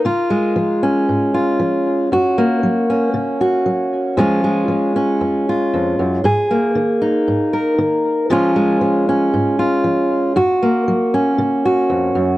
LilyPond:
\new Staff \with { instrumentName = "Steel-string acoustic guitar" } { \clef bass \time 4/4 \key des \major \tempo 4 = 116 << { f'8 aes4 des'4 f'4. | ges'8 bes4 des'4 ges'4. | <f aes des' f'>8 aes4 des'4 f'4. | aes'8 bes4 ees'4 bes'4. |
<f aes des' f'>8 aes4 des'4 f'4. | ges'8 bes4 des'4 ges'4. | } \\ { des4 f4 aes,4 f4 | ges,4 ges4 des4 ges4 | f,4 f4 f,4 f,8 ges,8 | aes,4 ees4 aes,4 ees4 |
des4 f4 aes,4 f4 | ges,4 ges4 des4 f,8 ges,8 | } >> }